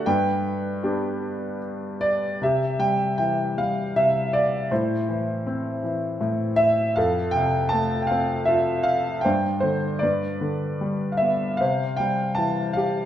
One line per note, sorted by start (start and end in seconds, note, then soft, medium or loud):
0.06 2.37 G2 medium
0.06 1.58 B4 medium
0.06 1.57 G5 medium
0.83 2.37 B3 soft
0.83 2.37 D4 soft
0.83 2.37 G4 soft
2.01 2.42 D5 medium
2.42 3.95 C3 medium
2.42 3.55 G4 soft
2.42 2.82 E5 medium
2.79 3.56 G3 soft
2.79 3.16 G5 medium
3.18 4.67 E3 soft
3.18 3.58 G5 medium
3.58 4.68 G3 soft
3.58 3.97 F5 medium
3.96 4.69 C3 soft
3.96 4.35 E5 medium
4.33 4.72 D5 medium
4.71 6.19 A2 medium
4.71 6.18 E4 soft
4.71 6.17 C5 medium
5.09 5.82 E3 soft
5.47 6.93 C4 soft
5.84 6.94 E3 soft
6.21 6.94 A2 medium
6.56 6.97 E5 medium
6.96 9.21 F2 medium
6.96 8.07 A4 medium
6.96 7.35 F5 medium
7.31 7.72 G5 medium
7.35 8.83 C3 soft
7.69 9.21 A3 soft
7.69 8.02 A5 medium
8.02 8.09 G5 medium
8.07 9.22 C4 soft
8.07 8.48 F5 medium
8.45 9.23 F4 soft
8.45 8.86 E5 medium
8.83 9.25 F5 medium
9.21 9.59 C5 soft
9.21 9.59 G5 medium
9.25 10.00 G2 medium
9.60 10.01 D3 soft
9.60 10.02 C5 medium
9.99 11.57 G2 medium
9.99 11.17 B4 soft
9.99 11.16 D5 medium
10.41 11.57 D3 soft
10.81 11.58 G3 soft
11.12 11.20 F5 soft
11.17 11.60 E5 medium
11.21 11.60 B3 soft
11.57 13.05 C3 medium
11.57 12.73 C5 soft
11.57 12.00 F5 medium
11.97 13.05 G3 soft
11.97 12.38 G5 medium
12.35 13.05 E3 soft
12.35 12.76 A5 medium
12.73 13.05 G4 soft
12.73 13.05 F5 medium